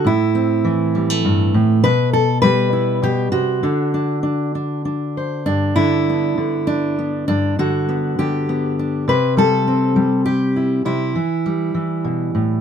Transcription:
0, 0, Header, 1, 2, 480
1, 0, Start_track
1, 0, Key_signature, 1, "major"
1, 0, Tempo, 595829
1, 48, Time_signature, 3, 2, 24, 8
1, 2928, Tempo, 607903
1, 5808, Tempo, 596421
1, 10095, End_track
2, 0, Start_track
2, 0, Title_t, "Steel-string acoustic guitar"
2, 0, Program_c, 0, 25
2, 36, Note_on_c, 0, 45, 67
2, 53, Note_on_c, 0, 64, 86
2, 282, Note_on_c, 0, 60, 52
2, 520, Note_on_c, 0, 52, 64
2, 764, Note_on_c, 0, 55, 49
2, 885, Note_off_c, 0, 55, 0
2, 885, Note_on_c, 0, 57, 40
2, 1005, Note_on_c, 0, 43, 61
2, 1233, Note_off_c, 0, 45, 0
2, 1243, Note_on_c, 0, 45, 68
2, 1246, Note_off_c, 0, 43, 0
2, 1452, Note_off_c, 0, 52, 0
2, 1454, Note_off_c, 0, 60, 0
2, 1476, Note_off_c, 0, 64, 0
2, 1479, Note_on_c, 0, 71, 120
2, 1483, Note_off_c, 0, 45, 0
2, 1483, Note_off_c, 0, 57, 0
2, 1483, Note_on_c, 0, 47, 77
2, 1716, Note_off_c, 0, 71, 0
2, 1719, Note_on_c, 0, 69, 92
2, 1944, Note_off_c, 0, 69, 0
2, 1947, Note_on_c, 0, 71, 114
2, 1957, Note_on_c, 0, 55, 72
2, 2197, Note_on_c, 0, 64, 50
2, 2426, Note_off_c, 0, 47, 0
2, 2436, Note_on_c, 0, 47, 65
2, 2441, Note_off_c, 0, 64, 0
2, 2445, Note_on_c, 0, 67, 98
2, 2670, Note_off_c, 0, 67, 0
2, 2673, Note_on_c, 0, 66, 87
2, 2676, Note_off_c, 0, 47, 0
2, 2679, Note_on_c, 0, 48, 63
2, 2896, Note_off_c, 0, 55, 0
2, 2920, Note_off_c, 0, 71, 0
2, 2924, Note_off_c, 0, 48, 0
2, 2924, Note_on_c, 0, 50, 72
2, 2929, Note_on_c, 0, 62, 52
2, 3159, Note_off_c, 0, 62, 0
2, 3169, Note_on_c, 0, 62, 52
2, 3388, Note_off_c, 0, 62, 0
2, 3397, Note_on_c, 0, 62, 63
2, 3641, Note_off_c, 0, 62, 0
2, 3651, Note_on_c, 0, 62, 46
2, 3880, Note_off_c, 0, 62, 0
2, 3889, Note_on_c, 0, 62, 61
2, 4143, Note_on_c, 0, 72, 44
2, 4347, Note_off_c, 0, 62, 0
2, 4351, Note_off_c, 0, 72, 0
2, 4365, Note_off_c, 0, 66, 0
2, 4368, Note_on_c, 0, 62, 88
2, 4375, Note_on_c, 0, 43, 60
2, 4601, Note_off_c, 0, 50, 0
2, 4603, Note_on_c, 0, 64, 91
2, 4610, Note_on_c, 0, 50, 64
2, 4871, Note_on_c, 0, 59, 40
2, 5082, Note_off_c, 0, 50, 0
2, 5091, Note_off_c, 0, 62, 0
2, 5092, Note_on_c, 0, 50, 54
2, 5325, Note_on_c, 0, 62, 83
2, 5564, Note_off_c, 0, 64, 0
2, 5566, Note_off_c, 0, 59, 0
2, 5575, Note_on_c, 0, 59, 46
2, 5778, Note_off_c, 0, 43, 0
2, 5781, Note_off_c, 0, 59, 0
2, 5795, Note_off_c, 0, 62, 0
2, 5805, Note_on_c, 0, 62, 88
2, 5810, Note_on_c, 0, 43, 64
2, 6045, Note_off_c, 0, 50, 0
2, 6047, Note_off_c, 0, 62, 0
2, 6054, Note_on_c, 0, 50, 62
2, 6057, Note_on_c, 0, 66, 92
2, 6295, Note_on_c, 0, 59, 49
2, 6525, Note_off_c, 0, 50, 0
2, 6535, Note_on_c, 0, 50, 58
2, 6538, Note_on_c, 0, 67, 81
2, 6770, Note_off_c, 0, 59, 0
2, 6780, Note_on_c, 0, 59, 49
2, 7010, Note_off_c, 0, 66, 0
2, 7025, Note_on_c, 0, 62, 49
2, 7217, Note_off_c, 0, 43, 0
2, 7223, Note_off_c, 0, 59, 0
2, 7225, Note_off_c, 0, 62, 0
2, 7249, Note_off_c, 0, 50, 0
2, 7250, Note_off_c, 0, 67, 0
2, 7252, Note_on_c, 0, 48, 67
2, 7262, Note_on_c, 0, 71, 106
2, 7489, Note_on_c, 0, 55, 66
2, 7491, Note_off_c, 0, 71, 0
2, 7499, Note_on_c, 0, 69, 91
2, 7734, Note_on_c, 0, 60, 50
2, 7959, Note_off_c, 0, 55, 0
2, 7962, Note_on_c, 0, 55, 67
2, 8198, Note_off_c, 0, 69, 0
2, 8201, Note_on_c, 0, 67, 89
2, 8448, Note_on_c, 0, 64, 41
2, 8646, Note_off_c, 0, 48, 0
2, 8649, Note_off_c, 0, 60, 0
2, 8650, Note_off_c, 0, 64, 0
2, 8673, Note_off_c, 0, 67, 0
2, 8680, Note_on_c, 0, 48, 69
2, 8685, Note_on_c, 0, 64, 78
2, 8915, Note_off_c, 0, 48, 0
2, 8921, Note_off_c, 0, 55, 0
2, 8925, Note_on_c, 0, 52, 61
2, 9168, Note_on_c, 0, 55, 45
2, 9389, Note_off_c, 0, 52, 0
2, 9399, Note_on_c, 0, 52, 54
2, 9641, Note_on_c, 0, 47, 55
2, 9881, Note_off_c, 0, 47, 0
2, 9884, Note_on_c, 0, 45, 55
2, 10095, Note_off_c, 0, 45, 0
2, 10095, Note_off_c, 0, 52, 0
2, 10095, Note_off_c, 0, 55, 0
2, 10095, Note_off_c, 0, 64, 0
2, 10095, End_track
0, 0, End_of_file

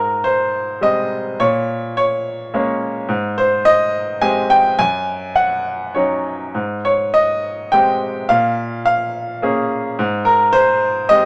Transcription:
0, 0, Header, 1, 2, 480
1, 0, Start_track
1, 0, Key_signature, -4, "major"
1, 0, Tempo, 581395
1, 1153, Time_signature, 3, 2, 24, 8
1, 1627, Tempo, 563380
1, 4027, Tempo, 588813
1, 6427, Tempo, 562852
1, 9429, End_track
2, 0, Start_track
2, 0, Title_t, "Grand piano"
2, 0, Program_c, 0, 0
2, 0, Control_c, 0, 64, 127
2, 0, Note_on_c, 0, 44, 47
2, 0, Note_on_c, 0, 70, 53
2, 174, Note_off_c, 0, 70, 0
2, 199, Note_on_c, 0, 72, 76
2, 670, Note_on_c, 0, 55, 43
2, 676, Note_on_c, 0, 56, 36
2, 677, Note_on_c, 0, 60, 42
2, 683, Note_on_c, 0, 75, 74
2, 697, Note_off_c, 0, 72, 0
2, 1122, Note_off_c, 0, 44, 0
2, 1134, Note_off_c, 0, 55, 0
2, 1137, Note_off_c, 0, 56, 0
2, 1138, Note_off_c, 0, 60, 0
2, 1154, Note_on_c, 0, 73, 79
2, 1156, Note_on_c, 0, 46, 58
2, 1166, Control_c, 0, 64, 0
2, 1169, Note_off_c, 0, 75, 0
2, 1305, Control_c, 0, 64, 127
2, 1614, Note_off_c, 0, 73, 0
2, 1627, Note_on_c, 0, 73, 78
2, 2109, Note_on_c, 0, 58, 39
2, 2111, Note_on_c, 0, 56, 42
2, 2114, Note_on_c, 0, 61, 49
2, 2313, Note_off_c, 0, 73, 0
2, 2551, Note_off_c, 0, 46, 0
2, 2569, Note_off_c, 0, 58, 0
2, 2570, Note_off_c, 0, 56, 0
2, 2572, Note_off_c, 0, 61, 0
2, 2578, Note_on_c, 0, 44, 62
2, 2596, Control_c, 0, 64, 0
2, 2766, Control_c, 0, 64, 127
2, 2826, Note_on_c, 0, 72, 80
2, 3048, Note_off_c, 0, 72, 0
2, 3060, Note_on_c, 0, 75, 99
2, 3539, Note_on_c, 0, 80, 88
2, 3541, Note_on_c, 0, 67, 53
2, 3543, Note_on_c, 0, 56, 46
2, 3543, Note_on_c, 0, 60, 45
2, 3556, Note_off_c, 0, 75, 0
2, 3765, Note_off_c, 0, 80, 0
2, 3783, Note_on_c, 0, 79, 84
2, 3991, Note_off_c, 0, 44, 0
2, 4013, Note_off_c, 0, 67, 0
2, 4014, Note_off_c, 0, 56, 0
2, 4014, Note_off_c, 0, 60, 0
2, 4026, Note_on_c, 0, 80, 95
2, 4028, Note_on_c, 0, 42, 60
2, 4035, Note_off_c, 0, 79, 0
2, 4038, Control_c, 0, 64, 0
2, 4162, Control_c, 0, 64, 127
2, 4467, Note_off_c, 0, 80, 0
2, 4490, Note_on_c, 0, 78, 83
2, 4971, Note_on_c, 0, 73, 53
2, 4981, Note_on_c, 0, 54, 37
2, 4982, Note_on_c, 0, 63, 40
2, 4984, Note_on_c, 0, 61, 31
2, 4986, Note_off_c, 0, 78, 0
2, 5311, Note_off_c, 0, 73, 0
2, 5429, Note_off_c, 0, 42, 0
2, 5450, Note_off_c, 0, 54, 0
2, 5450, Note_off_c, 0, 63, 0
2, 5451, Note_off_c, 0, 61, 0
2, 5461, Note_on_c, 0, 44, 50
2, 5472, Control_c, 0, 64, 0
2, 5634, Control_c, 0, 64, 127
2, 5707, Note_on_c, 0, 73, 66
2, 5942, Note_on_c, 0, 75, 82
2, 5957, Note_off_c, 0, 73, 0
2, 6416, Note_on_c, 0, 79, 82
2, 6429, Note_on_c, 0, 56, 40
2, 6431, Note_on_c, 0, 60, 40
2, 6434, Note_on_c, 0, 67, 49
2, 6440, Note_off_c, 0, 75, 0
2, 6881, Note_off_c, 0, 44, 0
2, 6902, Note_off_c, 0, 56, 0
2, 6902, Note_on_c, 0, 77, 86
2, 6903, Note_off_c, 0, 60, 0
2, 6905, Note_off_c, 0, 67, 0
2, 6910, Note_on_c, 0, 46, 63
2, 6925, Note_off_c, 0, 79, 0
2, 6928, Control_c, 0, 64, 0
2, 7075, Control_c, 0, 64, 127
2, 7372, Note_off_c, 0, 77, 0
2, 7385, Note_on_c, 0, 77, 85
2, 7869, Note_on_c, 0, 58, 44
2, 7875, Note_on_c, 0, 61, 43
2, 7878, Note_on_c, 0, 68, 53
2, 8072, Note_off_c, 0, 77, 0
2, 8310, Note_off_c, 0, 46, 0
2, 8331, Note_off_c, 0, 58, 0
2, 8334, Note_off_c, 0, 61, 0
2, 8335, Note_off_c, 0, 68, 0
2, 8352, Note_on_c, 0, 44, 67
2, 8359, Control_c, 0, 64, 0
2, 8523, Control_c, 0, 64, 127
2, 8575, Note_on_c, 0, 70, 76
2, 8810, Note_on_c, 0, 72, 96
2, 8825, Note_off_c, 0, 70, 0
2, 9291, Note_on_c, 0, 75, 93
2, 9300, Note_on_c, 0, 56, 45
2, 9308, Note_on_c, 0, 67, 53
2, 9309, Note_on_c, 0, 60, 46
2, 9315, Note_off_c, 0, 72, 0
2, 9429, Note_off_c, 0, 44, 0
2, 9429, Note_off_c, 0, 56, 0
2, 9429, Note_off_c, 0, 60, 0
2, 9429, Note_off_c, 0, 67, 0
2, 9429, Note_off_c, 0, 75, 0
2, 9429, End_track
0, 0, End_of_file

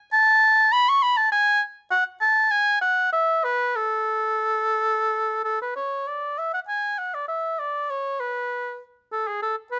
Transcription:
0, 0, Header, 1, 2, 480
1, 0, Start_track
1, 0, Key_signature, 3, "major"
1, 0, Tempo, 600601
1, 94, Time_signature, 3, 2, 24, 8
1, 2494, Tempo, 660066
1, 4414, Tempo, 608519
1, 7596, End_track
2, 0, Start_track
2, 0, Title_t, "Oboe"
2, 0, Program_c, 0, 68
2, 102, Note_on_c, 0, 81, 105
2, 578, Note_on_c, 0, 83, 107
2, 590, Note_off_c, 0, 81, 0
2, 710, Note_on_c, 0, 85, 97
2, 722, Note_off_c, 0, 83, 0
2, 818, Note_on_c, 0, 83, 91
2, 830, Note_off_c, 0, 85, 0
2, 935, Note_on_c, 0, 81, 94
2, 947, Note_off_c, 0, 83, 0
2, 1050, Note_off_c, 0, 81, 0
2, 1054, Note_on_c, 0, 80, 90
2, 1286, Note_off_c, 0, 80, 0
2, 1525, Note_on_c, 0, 78, 92
2, 1633, Note_off_c, 0, 78, 0
2, 1764, Note_on_c, 0, 81, 94
2, 2003, Note_on_c, 0, 80, 93
2, 2015, Note_off_c, 0, 81, 0
2, 2241, Note_off_c, 0, 80, 0
2, 2246, Note_on_c, 0, 78, 86
2, 2488, Note_off_c, 0, 78, 0
2, 2497, Note_on_c, 0, 76, 83
2, 2725, Note_on_c, 0, 71, 74
2, 2736, Note_off_c, 0, 76, 0
2, 2958, Note_on_c, 0, 69, 68
2, 2969, Note_off_c, 0, 71, 0
2, 4178, Note_off_c, 0, 69, 0
2, 4182, Note_on_c, 0, 69, 61
2, 4292, Note_off_c, 0, 69, 0
2, 4307, Note_on_c, 0, 71, 51
2, 4407, Note_off_c, 0, 71, 0
2, 4411, Note_on_c, 0, 73, 55
2, 4661, Note_on_c, 0, 74, 50
2, 4673, Note_off_c, 0, 73, 0
2, 4903, Note_on_c, 0, 76, 55
2, 4915, Note_off_c, 0, 74, 0
2, 5021, Note_off_c, 0, 76, 0
2, 5027, Note_on_c, 0, 78, 57
2, 5078, Note_off_c, 0, 78, 0
2, 5140, Note_on_c, 0, 80, 59
2, 5379, Note_on_c, 0, 78, 51
2, 5391, Note_off_c, 0, 80, 0
2, 5504, Note_on_c, 0, 74, 50
2, 5515, Note_off_c, 0, 78, 0
2, 5608, Note_off_c, 0, 74, 0
2, 5613, Note_on_c, 0, 76, 54
2, 5857, Note_on_c, 0, 74, 55
2, 5869, Note_off_c, 0, 76, 0
2, 6102, Note_on_c, 0, 73, 53
2, 6113, Note_off_c, 0, 74, 0
2, 6337, Note_on_c, 0, 71, 53
2, 6349, Note_off_c, 0, 73, 0
2, 6820, Note_off_c, 0, 71, 0
2, 7067, Note_on_c, 0, 69, 59
2, 7186, Note_on_c, 0, 68, 52
2, 7198, Note_off_c, 0, 69, 0
2, 7300, Note_off_c, 0, 68, 0
2, 7304, Note_on_c, 0, 69, 58
2, 7410, Note_off_c, 0, 69, 0
2, 7533, Note_on_c, 0, 71, 60
2, 7596, Note_off_c, 0, 71, 0
2, 7596, End_track
0, 0, End_of_file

